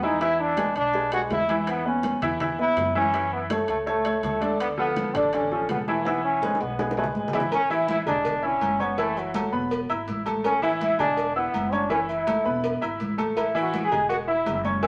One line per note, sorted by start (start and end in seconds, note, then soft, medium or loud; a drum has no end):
0.00 0.70 E2 medium
0.00 0.18 E3 medium
0.00 0.21 D#4 loud
0.00 0.18 E4 medium
0.00 0.18 E5 medium
0.00 high bongo soft
0.00 high conga medium
0.21 0.51 E3 medium
0.21 0.51 E4 medium
0.21 0.42 E4 loud
0.21 0.51 E5 medium
0.21 high bongo medium
0.21 high conga soft
0.21 high timbale medium
0.39 0.76 D4 loud
0.39 high conga soft
0.57 0.87 G#3 medium
0.57 0.88 G#4 medium
0.57 0.88 B4 medium
0.57 high bongo medium
0.57 high conga loud
0.57 high timbale medium
0.75 1.27 B1 loud
0.75 1.10 D4 loud
0.75 high bongo soft
0.75 high conga soft
0.75 high timbale medium
0.94 1.09 G#3 medium
0.94 1.09 G#4 medium
0.94 1.10 B4 medium
0.94 high bongo medium
0.94 high conga soft
1.12 1.42 G#3 medium
1.12 1.21 F#4 loud
1.12 1.43 G#4 medium
1.12 1.43 B4 medium
1.12 high bongo soft
1.12 high conga soft
1.12 high timbale loud
1.30 2.16 E2 medium
1.30 1.57 E4 loud
1.30 high bongo soft
1.30 low bongo medium
1.30 high conga medium
1.30 high timbale medium
1.30 low timbale medium
1.49 1.79 E3 medium
1.49 1.79 E4 medium
1.49 1.80 E5 medium
1.49 high bongo soft
1.49 high conga medium
1.49 high timbale medium
1.67 1.85 B3 loud
1.67 high bongo medium
1.67 high timbale medium
1.85 2.15 B3 medium
1.85 2.21 C#4 medium
1.85 2.16 B4 medium
1.85 high conga soft
2.03 high bongo medium
2.03 high conga loud
2.03 high timbale medium
2.22 2.73 E2 medium
2.22 2.37 E3 medium
2.22 2.37 E4 medium
2.22 2.38 E5 medium
2.22 high bongo soft
2.22 high conga soft
2.22 low conga medium
2.22 high timbale medium
2.40 2.55 E3 medium
2.40 2.56 E4 medium
2.40 2.56 E5 medium
2.40 high bongo medium
2.40 high conga soft
2.40 low conga medium
2.40 high timbale medium
2.58 2.89 B3 medium
2.58 2.94 E4 loud
2.58 2.89 B4 medium
2.58 high bongo soft
2.58 high conga soft
2.77 3.62 F#2 medium
2.77 high bongo soft
2.77 low bongo medium
2.77 high conga medium
2.77 high timbale medium
2.95 3.10 E3 medium
2.95 3.30 C#4 loud
2.95 3.10 E4 medium
2.95 3.10 E5 medium
2.95 high bongo soft
2.95 high conga medium
3.14 3.44 E3 medium
3.14 3.44 E4 medium
3.14 3.44 E5 medium
3.14 high bongo medium
3.14 high conga soft
3.14 high timbale medium
3.32 3.41 B3 medium
3.32 high conga soft
3.50 3.80 A3 medium
3.50 3.68 A3 medium
3.50 3.80 A4 medium
3.50 3.80 C#5 medium
3.50 high bongo medium
3.50 high conga loud
3.50 high timbale loud
3.68 4.19 C#2 medium
3.68 3.78 A3 medium
3.68 high bongo soft
3.68 high conga soft
3.68 high timbale medium
3.86 4.01 A3 medium
3.86 4.21 A3 loud
3.86 4.01 A4 medium
3.86 4.02 C#5 medium
3.86 high bongo medium
3.86 high conga soft
4.05 4.35 A3 medium
4.05 4.35 A4 medium
4.05 4.35 C#5 medium
4.05 high bongo soft
4.05 high conga soft
4.05 high timbale medium
4.23 5.09 D2 loud
4.23 4.58 A3 loud
4.23 high bongo soft
4.23 low bongo medium
4.23 high conga medium
4.23 high timbale medium
4.41 4.71 D3 medium
4.41 4.71 D4 medium
4.41 4.71 D5 medium
4.41 high bongo soft
4.41 high conga medium
4.41 high timbale medium
4.60 4.69 B3 loud
4.60 high bongo medium
4.60 high conga soft
4.60 high timbale medium
4.77 5.08 F3 medium
4.77 5.16 B3 loud
4.77 5.08 F4 medium
4.77 5.08 A4 medium
4.77 high conga soft
4.96 high bongo medium
4.96 high conga loud
4.96 high timbale medium
5.15 5.66 A1 medium
5.15 5.30 D3 medium
5.15 5.35 D4 medium
5.15 5.30 D4 medium
5.15 5.30 D5 medium
5.15 high bongo soft
5.15 high conga soft
5.15 low conga medium
5.15 high timbale loud
5.33 5.48 D3 medium
5.33 5.51 C#4 loud
5.33 5.49 D4 medium
5.33 5.49 D5 medium
5.33 high bongo medium
5.33 high conga soft
5.33 low conga medium
5.33 high timbale medium
5.51 5.81 F3 medium
5.51 5.68 C#4 loud
5.51 5.81 F4 medium
5.51 5.82 A4 medium
5.51 high bongo soft
5.51 high conga soft
5.69 6.55 E1 medium
5.69 5.79 B3 loud
5.69 high bongo soft
5.69 low bongo medium
5.69 high conga medium
5.69 high timbale medium
5.69 low timbale medium
5.88 6.03 E3 medium
5.88 6.07 A3 medium
5.88 6.03 E4 medium
5.88 6.03 E5 medium
5.88 high bongo soft
5.88 high conga medium
6.05 6.36 E3 medium
6.05 6.24 B3 loud
6.05 6.36 E4 medium
6.05 6.37 E5 medium
6.05 high bongo medium
6.05 high conga soft
6.05 high timbale medium
6.25 6.63 C#4 medium
6.25 high conga soft
6.42 6.72 G#3 medium
6.42 6.73 G#4 medium
6.42 6.73 B4 medium
6.42 high bongo medium
6.42 high conga loud
6.42 high timbale medium
6.55 high bongo medium
6.61 7.12 B1 medium
6.61 6.97 B3 medium
6.61 high conga soft
6.61 low timbale medium
6.79 6.94 G#3 medium
6.79 6.94 G#4 medium
6.79 6.94 B4 medium
6.79 high bongo loud
6.79 high conga soft
6.79 low timbale medium
6.91 high bongo loud
6.97 7.27 G#3 medium
6.97 7.06 A3 medium
6.97 7.27 G#4 medium
6.97 7.28 B4 medium
6.97 high conga soft
6.97 low timbale medium
7.04 low bongo medium
7.15 8.01 A1 medium
7.15 7.42 G#3 medium
7.15 high conga medium
7.28 low bongo loud
7.33 7.49 E3 medium
7.33 7.49 E4 medium
7.33 7.49 E5 medium
7.33 high conga medium
7.33 low timbale loud
7.40 low bongo loud
7.52 7.70 C#4 loud
7.52 cowbell loud
7.52 high conga soft
7.52 low agogo loud
7.70 8.00 E3 medium
7.70 8.00 E4 medium
7.70 7.88 E4 loud
7.70 8.00 E5 medium
7.70 high conga soft
7.70 low agogo medium
7.88 7.98 E4 loud
7.88 cowbell medium
7.88 high conga loud
8.06 8.58 E1 medium
8.06 8.36 G#3 medium
8.06 8.46 D4 loud
8.06 8.37 G#4 medium
8.06 8.37 G#5 medium
8.06 high conga soft
8.06 low conga medium
8.06 low agogo loud
8.25 cowbell loud
8.25 high conga soft
8.25 low conga medium
8.25 low agogo medium
8.42 8.82 C#4 loud
8.42 8.73 E4 medium
8.42 8.73 E5 medium
8.42 8.73 E6 medium
8.42 high conga soft
8.61 9.47 F#1 medium
8.61 cowbell medium
8.61 high conga medium
8.61 low agogo loud
8.79 8.99 B3 medium
8.79 8.94 C#4 medium
8.79 8.95 C#5 medium
8.79 8.95 C#6 medium
8.79 high conga medium
8.79 low agogo medium
8.98 9.28 E3 medium
8.98 9.19 A3 loud
8.98 9.28 E4 medium
8.98 9.28 E5 medium
8.98 cowbell loud
8.98 high conga soft
9.17 9.90 F#3 medium
9.17 high conga soft
9.17 low agogo medium
9.34 9.49 A3 medium
9.34 9.50 A4 medium
9.34 9.50 A5 medium
9.34 cowbell medium
9.34 high conga loud
9.34 low agogo loud
9.52 9.87 E1 loud
9.52 9.82 B3 medium
9.52 9.83 B4 medium
9.52 9.83 B5 medium
9.52 high conga soft
9.71 cowbell loud
9.71 high conga soft
9.71 low agogo medium
9.89 10.06 G#1 medium
9.89 10.19 E4 medium
9.89 10.20 E5 medium
9.89 10.20 E6 medium
9.89 high conga soft
9.89 low agogo loud
10.08 10.93 A1 medium
10.08 cowbell medium
10.08 high conga medium
10.26 10.56 A3 medium
10.26 10.56 A4 medium
10.26 10.56 A5 medium
10.26 cowbell medium
10.26 high conga medium
10.26 low agogo medium
10.44 10.62 C#4 loud
10.44 cowbell loud
10.44 low agogo loud
10.62 10.92 E3 loud
10.62 10.92 E4 loud
10.62 10.71 E4 loud
10.62 10.93 E5 loud
10.62 high conga soft
10.62 low agogo medium
10.81 10.98 E4 loud
10.81 cowbell medium
10.81 high conga loud
10.99 11.50 E1 medium
10.99 11.29 G#3 medium
10.99 11.34 D4 loud
10.99 11.30 G#4 medium
10.99 11.30 G#5 medium
10.99 high conga soft
10.99 low conga medium
10.99 low agogo loud
11.17 cowbell loud
11.17 high conga soft
11.17 low agogo medium
11.36 11.75 B3 loud
11.36 11.66 E4 medium
11.36 11.66 E5 medium
11.36 11.66 E6 medium
11.36 high conga soft
11.54 12.39 F#1 medium
11.54 cowbell medium
11.54 high conga medium
11.54 low agogo loud
11.72 11.87 C#4 medium
11.72 11.91 D4 medium
11.72 11.88 C#5 medium
11.72 11.87 C#6 medium
11.72 high conga medium
11.72 low agogo medium
11.90 12.20 E3 medium
11.90 11.99 C#4 loud
11.90 12.20 E4 medium
11.90 12.20 E5 medium
11.90 cowbell loud
11.90 high conga soft
12.09 12.78 E4 loud
12.09 high conga soft
12.09 low agogo medium
12.27 12.42 A3 medium
12.27 12.42 A4 medium
12.27 12.42 A5 medium
12.27 cowbell medium
12.27 high conga loud
12.27 low agogo loud
12.45 12.79 E1 loud
12.45 12.75 B3 medium
12.45 12.75 B4 medium
12.45 12.75 B5 medium
12.45 high conga soft
12.64 cowbell loud
12.64 high conga soft
12.64 low agogo medium
12.81 13.12 E4 medium
12.81 13.12 E5 medium
12.81 13.12 E6 medium
12.81 high conga soft
12.81 low agogo loud
13.00 13.86 A1 medium
13.00 cowbell medium
13.00 high conga medium
13.18 13.48 A3 medium
13.18 13.48 A4 medium
13.18 13.48 A5 medium
13.18 cowbell medium
13.18 high conga medium
13.18 low agogo medium
13.37 13.60 E4 loud
13.37 cowbell loud
13.37 high conga soft
13.37 low agogo loud
13.55 13.85 E3 medium
13.55 13.85 E4 loud
13.55 13.85 E5 loud
13.55 high conga soft
13.55 low agogo medium
13.61 13.84 F#4 medium
13.74 cowbell medium
13.74 high conga loud
13.84 14.08 G#4 loud
13.91 14.42 E1 loud
13.91 14.21 G#3 medium
13.91 14.22 G#4 medium
13.91 14.22 G#5 medium
13.91 high conga soft
13.91 low conga medium
13.91 low agogo loud
14.09 14.17 F#4 loud
14.09 cowbell loud
14.09 high conga soft
14.09 low agogo medium
14.27 14.58 E4 medium
14.27 14.62 E4 loud
14.27 14.58 E5 medium
14.27 14.58 E6 medium
14.27 high conga soft
14.46 14.87 F#1 medium
14.46 cowbell medium
14.46 high conga medium
14.46 low timbale medium
14.46 low agogo loud
14.64 14.79 C#4 medium
14.64 14.80 C#5 medium
14.64 14.80 C#6 medium
14.64 high conga medium
14.64 low agogo medium
14.82 14.87 E3 medium
14.82 14.87 C#4 loud
14.82 14.87 E4 medium
14.82 14.87 E5 medium
14.82 cowbell loud
14.82 high conga soft